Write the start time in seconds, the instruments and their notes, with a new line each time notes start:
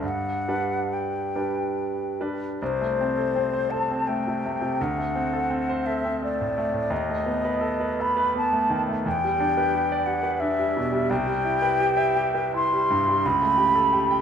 0.02 grand piano G2, flute F#5
0.48 grand piano G3 D4 B4
0.93 flute G5
1.36 grand piano G3 D4 B4
2.20 grand piano G3 D4 B4
2.62 grand piano C2, flute C5
2.82 grand piano A3
3.01 grand piano C4
3.17 grand piano A4
3.36 grand piano C4
3.53 grand piano C5
3.70 grand piano A4, flute A5
3.91 grand piano C4
4.07 grand piano A3, flute G5
4.27 grand piano C3
4.46 grand piano A3
4.61 grand piano C3
4.81 grand piano D2, flute F#5
4.98 grand piano A3
5.15 grand piano C4
5.33 grand piano A4
5.50 grand piano C4
5.70 grand piano C5
5.86 grand piano A4, flute E5
6.05 grand piano C4
6.22 grand piano A3, flute D5
6.41 grand piano A2
6.58 grand piano A3
6.74 grand piano A2
6.90 grand piano D#2, flute D#5
7.09 grand piano A3
7.26 grand piano B3
7.45 grand piano B4
7.61 grand piano A4
7.80 grand piano B4
8.00 grand piano A4, flute B5
8.17 grand piano B4
8.35 grand piano B3, flute A5
8.53 grand piano A3
8.70 grand piano D#3
8.88 grand piano A3
9.06 grand piano E2, flute G5
9.24 grand piano G3
9.40 grand piano D4
9.57 grand piano B4
9.74 grand piano G4
9.92 grand piano D5
10.06 grand piano G4, flute F#5
10.23 grand piano B4
10.40 grand piano D4, flute E5
10.59 grand piano G3
10.77 grand piano B2
10.92 grand piano G3
11.10 grand piano C2, flute G5
11.26 grand piano G3
11.45 grand piano E4
11.62 grand piano B4
11.80 grand piano G4
11.97 grand piano E5
12.17 grand piano G4
12.35 grand piano B4
12.54 grand piano E4, flute C6
12.73 grand piano G3
12.90 grand piano G2
13.08 grand piano G3
13.25 grand piano C#2, flute B5
13.42 grand piano A3
13.57 grand piano G4
13.75 grand piano A4
13.93 grand piano G4
14.11 grand piano G5